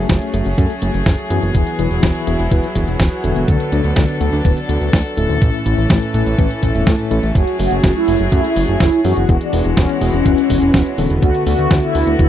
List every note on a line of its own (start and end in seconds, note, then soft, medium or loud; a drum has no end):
0.00 5.38 F#3 medium
0.00 0.31 A3 medium
0.00 1.53 A3 medium
0.00 0.31 C#4 medium
0.00 1.53 C#4 medium
0.00 0.31 F#4 medium
0.00 0.31 G#4 medium
0.00 3.44 G#4 medium
0.09 0.18 F#1 loud
0.09 kick loud
0.09 snare loud
0.09 closed hi-hat medium
0.22 closed hi-hat soft
0.34 0.42 F#1 medium
0.34 0.47 A3 medium
0.34 0.47 C#4 medium
0.34 0.47 F#4 medium
0.34 0.47 G#4 medium
0.34 closed hi-hat loud
0.46 0.54 F#1 medium
0.46 closed hi-hat soft
0.58 0.67 F#2 loud
0.58 0.71 A3 medium
0.58 0.71 C#4 medium
0.58 0.71 F#4 medium
0.58 0.71 A4 loud
0.58 kick loud
0.58 closed hi-hat medium
0.70 closed hi-hat soft
0.82 0.91 F#1 loud
0.82 1.03 A3 medium
0.82 1.03 C#4 medium
0.82 1.03 F#4 medium
0.82 1.03 G#4 medium
0.82 closed hi-hat medium
0.94 1.03 F#1 medium
0.94 closed hi-hat soft
1.06 1.15 F#1 loud
1.06 kick loud
1.06 snare loud
1.06 closed hi-hat medium
1.18 closed hi-hat soft
1.30 1.39 F#2 medium
1.30 1.76 E3 loud
1.30 1.76 B3 medium
1.30 1.76 E4 medium
1.30 1.76 F#4 medium
1.30 1.76 G#4 loud
1.30 closed hi-hat loud
1.42 1.51 F#1 medium
1.42 closed hi-hat soft
1.54 1.63 E1 loud
1.54 5.38 B3 medium
1.54 3.46 E4 medium
1.54 kick loud
1.54 closed hi-hat medium
1.67 closed hi-hat soft
1.79 1.88 E1 medium
1.79 2.24 E3 medium
1.79 2.24 B3 medium
1.79 2.24 E4 medium
1.79 2.24 F#4 medium
1.79 2.24 G#4 medium
1.79 closed hi-hat medium
1.91 2.00 E1 medium
1.91 closed hi-hat soft
2.03 2.12 E1 loud
2.03 kick loud
2.03 snare loud
2.03 closed hi-hat medium
2.15 closed hi-hat soft
2.27 2.36 E1 medium
2.27 2.41 E3 medium
2.27 2.41 B3 medium
2.27 2.41 E4 medium
2.27 2.41 F#4 medium
2.27 2.41 G#4 medium
2.27 closed hi-hat medium
2.39 2.48 E1 medium
2.39 closed hi-hat soft
2.51 2.60 E1 loud
2.51 2.65 E3 medium
2.51 2.65 B3 medium
2.51 2.65 E4 medium
2.51 2.65 F#4 medium
2.51 2.65 B4 medium
2.51 kick loud
2.51 closed hi-hat medium
2.63 closed hi-hat soft
2.75 2.84 E1 loud
2.75 2.97 E3 medium
2.75 2.97 B3 medium
2.75 2.97 E4 medium
2.75 2.97 F#4 medium
2.75 2.97 G#4 medium
2.75 kick medium
2.75 closed hi-hat medium
2.88 2.96 E1 medium
2.88 closed hi-hat soft
3.00 3.08 E1 loud
3.00 kick loud
3.00 snare loud
3.00 closed hi-hat medium
3.12 closed hi-hat soft
3.24 3.33 E1 medium
3.24 3.69 D3 medium
3.24 3.69 B3 medium
3.24 3.69 D4 medium
3.24 3.69 F#4 medium
3.24 3.69 A4 loud
3.24 closed hi-hat medium
3.36 3.45 E1 medium
3.36 closed hi-hat soft
3.48 3.57 D2 medium
3.48 5.40 D4 medium
3.48 7.31 A4 medium
3.48 kick loud
3.48 closed hi-hat medium
3.60 closed hi-hat soft
3.72 3.81 D2 loud
3.72 4.18 D3 medium
3.72 4.18 B3 medium
3.72 4.18 D4 medium
3.72 4.18 F#4 medium
3.72 4.18 A4 medium
3.72 closed hi-hat medium
3.84 3.93 D2 medium
3.84 closed hi-hat soft
3.96 4.05 D2 loud
3.96 kick loud
3.96 snare loud
3.96 closed hi-hat medium
4.09 closed hi-hat soft
4.21 4.30 D2 medium
4.21 4.34 D3 medium
4.21 4.34 B3 medium
4.21 4.34 D4 medium
4.21 4.34 F#4 medium
4.21 4.34 A4 loud
4.21 closed hi-hat medium
4.33 4.42 D2 medium
4.33 closed hi-hat soft
4.45 4.54 D1 loud
4.45 4.58 D3 medium
4.45 4.58 B3 medium
4.45 4.58 D4 medium
4.45 4.58 F#4 medium
4.45 4.58 B4 loud
4.45 kick loud
4.45 closed hi-hat medium
4.57 closed hi-hat soft
4.69 4.78 D2 medium
4.69 4.90 D3 medium
4.69 4.90 B3 medium
4.69 4.90 D4 medium
4.69 4.90 F#4 medium
4.69 4.90 A4 medium
4.69 closed hi-hat medium
4.81 4.90 D2 medium
4.81 closed hi-hat soft
4.93 5.02 D2 loud
4.93 kick loud
4.93 snare loud
4.93 closed hi-hat medium
5.05 closed hi-hat soft
5.17 5.26 D1 medium
5.17 5.63 A2 loud
5.17 5.63 A3 medium
5.17 5.63 C#4 medium
5.17 5.63 E4 medium
5.17 5.63 A4 loud
5.17 closed hi-hat medium
5.30 5.38 D2 medium
5.30 closed hi-hat soft
5.42 5.50 A1 loud
5.42 7.33 E3 medium
5.42 9.25 A3 medium
5.42 9.25 C#4 medium
5.42 kick loud
5.42 closed hi-hat medium
5.54 closed hi-hat soft
5.66 5.75 A1 medium
5.66 6.11 A2 medium
5.66 6.11 A3 medium
5.66 6.11 C#4 medium
5.66 6.11 E4 medium
5.66 6.11 A4 medium
5.66 closed hi-hat medium
5.78 5.87 A1 medium
5.78 closed hi-hat soft
5.90 5.99 A1 loud
5.90 kick loud
5.90 snare loud
5.90 closed hi-hat medium
6.02 closed hi-hat soft
6.14 6.23 A1 medium
6.14 6.28 A2 medium
6.14 6.28 A3 medium
6.14 6.28 C#4 medium
6.14 6.28 E4 medium
6.14 6.28 A4 loud
6.14 closed hi-hat medium
6.26 6.35 A1 medium
6.26 closed hi-hat soft
6.38 6.47 A1 medium
6.38 6.52 A2 medium
6.38 6.52 A3 medium
6.38 6.52 C#4 medium
6.38 6.52 E4 medium
6.38 6.52 B4 medium
6.38 kick loud
6.38 closed hi-hat medium
6.51 closed hi-hat soft
6.63 6.71 A1 loud
6.63 6.72 A2 medium
6.63 6.72 A3 medium
6.63 6.72 C#4 medium
6.63 6.72 E4 medium
6.63 6.72 A4 medium
6.63 kick medium
6.63 closed hi-hat medium
6.75 6.84 E1 medium
6.75 7.08 A2 medium
6.75 7.08 A3 medium
6.75 7.08 C#4 medium
6.75 7.08 E4 medium
6.75 7.08 A4 medium
6.75 closed hi-hat soft
6.87 6.96 A2 loud
6.87 kick loud
6.87 snare loud
6.87 closed hi-hat medium
6.99 closed hi-hat soft
7.11 7.20 A1 loud
7.11 7.24 A3 medium
7.11 7.24 C#4 medium
7.11 7.24 E4 medium
7.11 7.24 A4 loud
7.11 closed hi-hat medium
7.23 7.32 A1 medium
7.23 closed hi-hat soft
7.35 7.44 F#1 loud
7.35 9.27 F#3 medium
7.35 7.56 F#4 loud
7.35 9.27 G#4 medium
7.35 kick loud
7.35 closed hi-hat medium
7.47 closed hi-hat soft
7.59 7.68 F#1 medium
7.59 8.05 A3 medium
7.59 8.05 C#4 medium
7.59 8.05 F#4 medium
7.59 7.91 F#4 loud
7.59 8.05 G#4 medium
7.59 open hi-hat loud
7.72 7.80 F#1 medium
7.72 closed hi-hat soft
7.83 7.92 F#1 loud
7.83 kick loud
7.83 snare loud
7.83 closed hi-hat medium
7.96 8.27 E4 loud
7.96 closed hi-hat soft
8.08 8.17 F#1 medium
8.08 8.21 A3 medium
8.08 8.21 C#4 medium
8.08 8.21 F#4 medium
8.08 8.21 G#4 loud
8.08 open hi-hat medium
8.20 8.29 F#1 medium
8.20 closed hi-hat soft
8.32 8.41 F#2 loud
8.32 8.45 A3 medium
8.32 8.45 C#4 medium
8.32 8.64 E4 loud
8.32 8.45 F#4 medium
8.32 8.45 A4 medium
8.32 kick loud
8.32 closed hi-hat medium
8.44 closed hi-hat soft
8.56 8.65 F#1 loud
8.56 8.77 A3 medium
8.56 8.77 C#4 medium
8.56 8.77 F#4 medium
8.56 8.77 G#4 medium
8.56 open hi-hat loud
8.68 8.77 F#1 medium
8.68 9.00 E4 loud
8.68 closed hi-hat soft
8.80 8.89 F#1 loud
8.80 kick loud
8.80 snare loud
8.80 closed hi-hat medium
8.92 closed hi-hat soft
9.05 9.13 F#2 loud
9.05 9.50 E3 medium
9.05 9.50 B3 medium
9.05 9.50 E4 medium
9.05 9.50 F#4 medium
9.05 9.36 F#4 loud
9.05 9.50 G#4 loud
9.05 open hi-hat medium
9.17 9.26 F#1 medium
9.17 closed hi-hat soft
9.29 9.38 E1 loud
9.29 11.20 E3 medium
9.29 11.20 G#3 medium
9.29 12.29 B3 medium
9.29 11.21 F#4 medium
9.29 kick loud
9.29 closed hi-hat medium
9.41 9.73 D4 loud
9.41 closed hi-hat soft
9.53 9.62 E1 medium
9.53 9.98 E3 medium
9.53 9.98 B3 medium
9.53 9.98 E4 medium
9.53 9.98 F#4 medium
9.53 9.98 G#4 medium
9.53 open hi-hat loud
9.65 9.74 E1 medium
9.65 closed hi-hat soft
9.77 9.86 E1 loud
9.77 10.09 C#4 medium
9.77 kick loud
9.77 snare loud
9.77 closed hi-hat medium
9.89 closed hi-hat soft
10.01 10.10 E1 medium
10.01 10.15 E3 medium
10.01 10.15 B3 medium
10.01 10.15 E4 medium
10.01 10.15 F#4 medium
10.01 10.15 G#4 medium
10.01 open hi-hat medium
10.14 10.22 E1 medium
10.14 11.13 C#4 loud
10.14 closed hi-hat soft
10.26 10.34 E1 medium
10.26 10.39 E3 medium
10.26 10.39 B3 medium
10.26 10.39 E4 medium
10.26 10.39 F#4 medium
10.26 10.39 B4 loud
10.26 kick loud
10.26 closed hi-hat medium
10.38 closed hi-hat soft
10.50 10.59 E1 loud
10.50 10.71 E3 medium
10.50 10.71 B3 medium
10.50 10.71 E4 medium
10.50 10.71 F#4 medium
10.50 10.71 G#4 medium
10.50 kick medium
10.50 open hi-hat loud
10.62 10.71 E1 medium
10.62 closed hi-hat soft
10.74 10.83 E1 loud
10.74 kick loud
10.74 snare loud
10.74 closed hi-hat medium
10.86 closed hi-hat soft
10.98 11.07 E1 medium
10.98 11.44 D3 medium
10.98 11.44 B3 medium
10.98 11.44 D4 medium
10.98 11.44 F#4 medium
10.98 11.44 A4 loud
10.98 open hi-hat medium
11.10 11.19 E1 medium
11.10 closed hi-hat soft
11.22 11.31 D2 loud
11.22 12.29 D3 medium
11.22 12.29 A3 medium
11.22 11.44 F#4 loud
11.22 12.29 F#4 medium
11.22 kick loud
11.22 closed hi-hat medium
11.35 closed hi-hat soft
11.47 11.55 D2 medium
11.47 11.92 D3 medium
11.47 11.92 B3 medium
11.47 11.92 D4 medium
11.47 11.78 F#4 loud
11.47 11.92 F#4 medium
11.47 11.92 A4 medium
11.47 open hi-hat loud
11.59 11.67 D2 medium
11.59 closed hi-hat soft
11.71 11.80 D2 loud
11.71 kick loud
11.71 snare loud
11.71 closed hi-hat medium
11.83 12.15 E4 loud
11.83 closed hi-hat soft
11.95 12.04 D2 medium
11.95 12.08 D3 medium
11.95 12.08 B3 medium
11.95 12.08 D4 medium
11.95 12.08 F#4 medium
11.95 12.08 A4 loud
11.95 open hi-hat loud
12.07 12.16 D2 medium
12.07 closed hi-hat soft
12.19 12.28 D1 medium
12.19 12.29 D3 medium
12.19 12.29 B3 medium
12.19 12.29 D4 medium
12.19 12.29 E4 loud
12.19 12.29 F#4 medium
12.19 12.29 B4 loud
12.19 kick loud
12.19 closed hi-hat medium